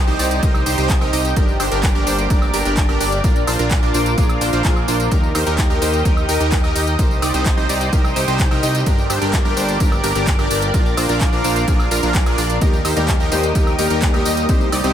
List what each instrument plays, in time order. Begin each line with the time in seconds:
Already playing: analog synth pad C5 D#5 G5 D#6
0.07 analog synth bass C2, supersaw synth D#4 G4 C5, tambourine
0.19 analog synth bass C2, supersaw synth D#4 G4 D5, open hi-hat, tambourine
0.31 closed hi-hat, tambourine
0.43 analog synth bass C2, supersaw synth D#4 G4 A#4, kick, closed hi-hat, tambourine
0.54 tambourine, high woodblock
0.66 analog synth bass C2, supersaw synth D#4 G4 C5, open hi-hat, tambourine
0.78 analog synth bass C2, supersaw synth D#4 G4 C5, closed hi-hat, tambourine
0.90 kick, clap, closed hi-hat, tambourine
1.01 analog synth bass C2, supersaw synth D#4 G4 A#4, tambourine, high woodblock
1.13 analog synth bass C2, supersaw synth D#4 G4 D#5, open hi-hat, tambourine
1.25 closed hi-hat, tambourine
1.36 analog synth bass G1, supersaw synth D4 G4 A#4, analog synth pad A#4 D5 D6, kick, closed hi-hat, tambourine
1.48 tambourine
1.60 analog synth bass G1, supersaw synth D4 G4 C5, open hi-hat, tambourine, high woodblock
1.72 analog synth bass G1, supersaw synth D4 G4 A#4, closed hi-hat, tambourine
1.83 kick, clap, closed hi-hat, tambourine
1.95 analog synth bass G1, supersaw synth D4 G4 A#4, tambourine
2.07 analog synth bass G1, supersaw synth D4 G4 C5, open hi-hat, tambourine
2.19 closed hi-hat, tambourine
2.30 analog synth bass G1, supersaw synth D4 G4 A#4, kick, closed hi-hat, tambourine
2.42 tambourine, high woodblock
2.54 analog synth bass G1, supersaw synth D4 G4 A#4, open hi-hat, tambourine
2.65 analog synth bass G1, supersaw synth D4 G4 A#4, closed hi-hat, tambourine
2.77 kick, clap, closed hi-hat, tambourine
2.89 analog synth bass G1, supersaw synth D4 G4 A#4, tambourine, high woodblock
3.00 analog synth bass G1, supersaw synth D4 G4 D5, open hi-hat, tambourine
3.12 closed hi-hat, tambourine
3.24 analog synth bass A#1, supersaw synth D4 F4 A#4, analog synth pad F5 D6, kick, closed hi-hat, tambourine
3.36 closed hi-hat, tambourine
3.47 analog synth bass A#1, supersaw synth D4 F4 C5, open hi-hat, tambourine, high woodblock
3.59 analog synth bass A#1, supersaw synth D4 F4 A#4, closed hi-hat, tambourine
3.71 kick, clap, closed hi-hat, tambourine
3.83 analog synth bass A#1, supersaw synth D4 F4 A#4, tambourine
3.94 analog synth bass A#1, supersaw synth D4 F4 C5, open hi-hat, tambourine
4.06 closed hi-hat, tambourine
4.18 analog synth bass A#1, supersaw synth D4 F4 G#4, kick, closed hi-hat, tambourine
4.29 closed hi-hat, tambourine, high woodblock
4.41 analog synth bass A#1, supersaw synth D4 F4 C5, open hi-hat, tambourine
4.53 analog synth bass A#1, supersaw synth D4 F4 C5, closed hi-hat, tambourine
4.65 analog synth bass A#1, supersaw synth D4 F4 G#4, kick, clap, closed hi-hat, tambourine
4.76 tambourine, high woodblock
4.88 analog synth bass A#1, supersaw synth D4 F4 C5, open hi-hat, tambourine
5.00 closed hi-hat, tambourine
5.11 analog synth bass D#2, supersaw synth D#4 G4 A#4, analog synth pad D#5 G5 D#6, kick, closed hi-hat, tambourine
5.23 tambourine
5.35 analog synth bass D#2, supersaw synth D#4 G4 C5, open hi-hat, tambourine, high woodblock
5.47 analog synth bass D#2, supersaw synth D#4 G4 A#4, closed hi-hat, tambourine
5.58 kick, clap, closed hi-hat, tambourine
5.70 analog synth bass D#2, supersaw synth D#4 G4 A#4, tambourine
5.82 analog synth bass D#2, supersaw synth D#4 G4 C5, open hi-hat, tambourine
5.93 closed hi-hat, tambourine
6.05 analog synth bass D#2, supersaw synth D#4 G4 A#4, kick, closed hi-hat, tambourine
6.17 tambourine, high woodblock
6.29 analog synth bass D#2, supersaw synth D#4 G4 A#4, open hi-hat, tambourine
6.40 analog synth bass D#2, supersaw synth D#4 G4 A#4, closed hi-hat, tambourine
6.52 kick, clap, closed hi-hat, tambourine
6.64 analog synth bass D#2, supersaw synth D#4 G4 A#4, tambourine, high woodblock
6.75 analog synth bass D#2, supersaw synth D#4 G4 D#5, open hi-hat, tambourine
6.87 closed hi-hat, tambourine
6.99 analog synth bass C2, supersaw synth D#4 G4 C5, analog synth pad C5 G5, kick, closed hi-hat, tambourine
7.11 tambourine
7.22 analog synth bass C2, supersaw synth D#4 G4 D5, open hi-hat, tambourine, high woodblock
7.34 analog synth bass C2, supersaw synth D#4 G4 C5, closed hi-hat, tambourine
7.46 kick, clap, closed hi-hat, tambourine
7.57 analog synth bass C2, supersaw synth D#4 G4 C5, tambourine
7.69 analog synth bass C2, supersaw synth D#4 G4 D5, open hi-hat, tambourine
7.81 closed hi-hat, tambourine
7.93 analog synth bass C2, supersaw synth D#4 G4 A#4, kick, closed hi-hat, tambourine
8.04 tambourine, high woodblock
8.16 analog synth bass C2, supersaw synth D#4 G4 C5, open hi-hat, tambourine
8.28 analog synth bass C2, supersaw synth D#4 G4 C5, closed hi-hat, tambourine
8.40 kick, clap, closed hi-hat, tambourine
8.51 analog synth bass C2, supersaw synth D#4 G4 A#4, tambourine, high woodblock
8.63 analog synth bass C2, supersaw synth D#4 G4 D#5, open hi-hat, tambourine
8.75 closed hi-hat, tambourine
8.86 analog synth bass G1, supersaw synth D4 G4 A#4, analog synth pad A#4 D5 D6, kick, closed hi-hat, tambourine
8.98 tambourine
9.10 analog synth bass G1, supersaw synth D4 G4 C5, open hi-hat, tambourine, high woodblock
9.22 analog synth bass G1, supersaw synth D4 G4 A#4, closed hi-hat, tambourine
9.33 kick, clap, closed hi-hat, tambourine
9.45 analog synth bass G1, supersaw synth D4 G4 A#4, tambourine
9.57 analog synth bass G1, supersaw synth D4 G4 C5, open hi-hat, tambourine
9.69 closed hi-hat, tambourine
9.80 analog synth bass G1, supersaw synth D4 G4 A#4, kick, closed hi-hat, tambourine
9.92 tambourine, high woodblock
10.04 analog synth bass G1, supersaw synth D4 G4 A#4, open hi-hat, tambourine
10.15 analog synth bass G1, supersaw synth D4 G4 A#4, closed hi-hat, tambourine
10.27 kick, clap, closed hi-hat, tambourine
10.39 analog synth bass G1, supersaw synth D4 G4 A#4, tambourine, high woodblock
10.51 analog synth bass G1, supersaw synth D4 G4 D5, open hi-hat, tambourine
10.62 closed hi-hat, tambourine
10.74 analog synth bass A#1, supersaw synth D4 F4 A#4, analog synth pad F5, kick, closed hi-hat, tambourine
10.86 tambourine
10.97 analog synth bass A#1, supersaw synth D4 F4 C5, open hi-hat, tambourine, high woodblock
11.09 analog synth bass A#1, supersaw synth D4 F4 A#4, closed hi-hat, tambourine
11.21 kick, clap, closed hi-hat, tambourine
11.33 analog synth bass A#1, supersaw synth D4 F4 A#4, tambourine
11.44 analog synth bass A#1, supersaw synth D4 F4 C5, open hi-hat, tambourine
11.56 closed hi-hat, tambourine
11.68 analog synth bass A#1, supersaw synth D4 F4 G#4, kick, closed hi-hat, tambourine
11.79 tambourine, high woodblock
11.91 analog synth bass A#1, supersaw synth D4 F4 A#4, open hi-hat, tambourine
12.03 analog synth bass A#1, supersaw synth D4 F4 A#4, closed hi-hat, tambourine
12.15 kick, clap, closed hi-hat, tambourine
12.26 analog synth bass A#1, supersaw synth D4 F4 G#4, closed hi-hat, tambourine, high woodblock
12.38 analog synth bass A#1, supersaw synth D4 F4 D5, open hi-hat, tambourine
12.50 closed hi-hat, tambourine
12.61 analog synth bass D#2, grand piano G3 A#3 D#4 G4, supersaw synth D#4 G4 A#4, analog synth pad D#5 G5 D#6, kick, closed hi-hat, tambourine
12.73 tambourine
12.85 analog synth bass D#2, supersaw synth D#4 G4 C5, open hi-hat, tambourine, high woodblock
12.96 analog synth bass D#2, grand piano G3 A#3 D#4 G4, supersaw synth D#4 G4 A#4, closed hi-hat, tambourine
13.08 kick, clap, closed hi-hat, tambourine
13.20 analog synth bass D#2, supersaw synth D#4 G4 A#4, tambourine
13.31 analog synth bass D#2, grand piano G3 A#3 D#4 G4, supersaw synth D#4 G4 C5, open hi-hat, tambourine
13.43 closed hi-hat, tambourine
13.55 analog synth bass D#2, grand piano G3 A#3 D#4 G4, supersaw synth D#4 G4 A#4, kick, closed hi-hat, tambourine
13.67 tambourine, high woodblock
13.78 analog synth bass D#2, grand piano G3 A#3 D#4 G4, supersaw synth D#4 G4 A#4, open hi-hat, tambourine
13.90 analog synth bass D#2, supersaw synth D#4 G4 A#4, closed hi-hat, tambourine
14.02 kick, clap, closed hi-hat, tambourine
14.13 analog synth bass D#2, grand piano G3 A#3 D#4 G4, supersaw synth D#4 G4 A#4, tambourine, high woodblock
14.25 analog synth bass D#2, supersaw synth D#4 G4 D#5, open hi-hat, tambourine
14.37 closed hi-hat, tambourine
14.48 analog synth bass C2, grand piano C3 G3 C4 D#4 G4, supersaw synth D#4 G4 C5, analog synth pad C5 D#5 G5, kick, closed hi-hat, tambourine
14.61 tambourine
14.72 analog synth bass C2, supersaw synth D#4 G4 D5, open hi-hat, tambourine, high woodblock
14.84 analog synth bass C2, grand piano C3 G3 C4 D#4 G4, supersaw synth D#4 G4 C5, closed hi-hat, tambourine